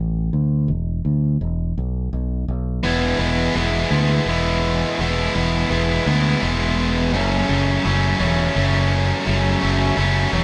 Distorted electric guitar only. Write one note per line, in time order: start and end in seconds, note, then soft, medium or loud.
2.83 3.54 E3 loud
2.83 3.21 G#3 medium
2.83 3.20 B3 loud
2.83 3.19 E4 loud
3.19 3.55 G#3 medium
3.19 3.56 B3 medium
3.19 3.56 E4 medium
3.54 3.92 E3 medium
3.54 3.91 G#3 medium
3.54 3.91 B3 medium
3.54 3.89 E4 medium
3.91 4.26 E3 medium
3.91 4.27 G#3 medium
3.91 4.28 B3 medium
3.91 4.28 E4 medium
4.27 4.98 E3 medium
4.27 4.98 G#3 medium
4.27 4.99 B3 medium
4.27 5.00 E4 medium
4.99 5.69 E3 medium
4.99 5.36 G#3 loud
4.99 5.34 B3 loud
4.99 5.34 E4 loud
5.35 5.70 G#3 medium
5.35 5.71 B3 medium
5.35 5.71 E4 medium
5.70 6.07 E3 medium
5.70 6.06 G#3 medium
5.70 6.06 B3 medium
5.70 6.05 E4 medium
6.07 6.40 E3 medium
6.07 6.41 G#3 medium
6.07 6.41 B3 medium
6.07 6.42 E4 loud
6.41 7.10 E3 medium
6.41 7.11 G#3 medium
6.41 7.11 B3 medium
6.41 7.11 E4 medium
7.12 8.21 F#2 medium
7.12 7.82 C#3 loud
7.12 7.50 F#3 medium
7.12 7.49 A3 loud
7.12 7.47 C#4 loud
7.48 7.84 F#3 medium
7.48 7.84 A3 medium
7.48 7.85 C#4 medium
7.83 8.20 C#3 medium
7.83 8.20 F#3 medium
7.83 8.20 A3 medium
7.83 8.18 C#4 loud
8.19 8.91 F#2 medium
8.19 8.54 C#3 medium
8.19 8.55 F#3 medium
8.19 8.56 A3 medium
8.19 8.56 C#4 medium
8.55 9.25 C#3 medium
8.55 9.26 F#3 medium
8.55 9.27 A3 loud
8.55 9.26 C#4 medium
9.25 9.97 F#2 medium
9.25 9.95 C#3 medium
9.25 9.62 F#3 loud
9.25 9.61 A3 loud
9.25 9.60 C#4 loud
9.61 9.97 F#3 medium
9.61 9.97 A3 medium
9.61 9.98 C#4 medium
9.96 10.32 C#3 medium
9.96 10.33 F#3 medium
9.96 10.32 A3 medium
9.96 10.30 C#4 medium
10.32 10.44 F#2 medium
10.32 10.44 C#3 medium
10.32 10.44 F#3 medium
10.32 10.44 A3 medium
10.32 10.44 C#4 medium